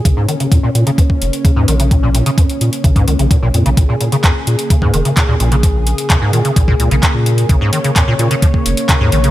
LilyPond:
<<
  \new Staff \with { instrumentName = "Analog synth pad" } { \time 4/4 \key bes \minor \tempo 4 = 129 << { des'1~ | des'1 | aes'1~ | aes'1 |
des''1 | } \\ { <des bes>1~ | <des bes>1~ | <des bes>1~ | <des bes>1~ |
<des bes>1 | } >> }
  \new Staff \with { instrumentName = "Acid bass" } { \clef bass \time 4/4 \key bes \minor des16 aes,16 ees16 des16 bes,16 bes,16 bes,16 des16 f16 r8. des16 aes,16 ees16 des16 | bes,16 bes,16 bes,16 des16 f16 r8. des16 aes,16 ees16 des16 bes,16 bes,16 bes,16 des16 | bes,16 bes,16 bes,16 des16 f16 r8. des16 aes,16 ees16 des16 bes,16 bes,16 bes,16 des16 | f16 r8. des16 aes,16 ees16 des16 bes,16 bes,16 bes,16 des16 f16 r8. |
des16 aes,16 ees16 des16 bes,16 bes,16 bes,16 des16 f16 r8. des16 aes,16 ees16 des16 | }
  \new Staff \with { instrumentName = "Sub bass" } { \clef bass \time 4/4 \key bes \minor bes,,16 r8. f,16 r16 bes,16 r8. f,,16 r8 ees,16 bes,,8~ | bes,,8. r16 f,16 r16 bes,16 r16 bes,,8 des,16 bes,,16 r16 bes,,16 f,16 bes,,16 | bes,,16 r8. f,16 r16 bes,16 r8. f,,16 r8 ees,16 bes,,8~ | bes,,8. r16 f,16 r16 bes,16 r16 bes,,8 des,16 bes,,16 r16 bes,8. |
bes,,16 r8. f,16 r16 bes,16 r8. f,,16 r8 ees,16 bes,,8 | }
  \new DrumStaff \with { instrumentName = "Drums" } \drummode { \time 4/4 <hh bd>8 hh16 hh16 <hh bd>8 hh16 hh16 <hh bd>16 bd16 hh16 hh16 <hh bd>8 hh16 hh16 | <hh bd>8 hh16 hh16 <hh bd>16 hh16 hh16 hh16 <hh bd>16 <hh bd>16 hh16 hh16 <hh bd>8 hh16 hh16 | <hh bd>8 hh16 hh16 <hc hh bd>8 hh16 hh16 <hh bd>16 bd16 hh16 hh16 <hc hh bd>8 hh16 hh16 | <hh bd>8 hh16 hh16 <hc hh bd>8 hh16 hh16 <hh bd>16 bd16 hh16 hh16 <hc hh bd>8 hh16 hh16 |
<hh bd>8 hh16 hh16 <hc hh bd>8 hh16 hh16 <hh bd>16 bd16 hh16 hh16 <hc hh bd>8 hh16 hh16 | }
>>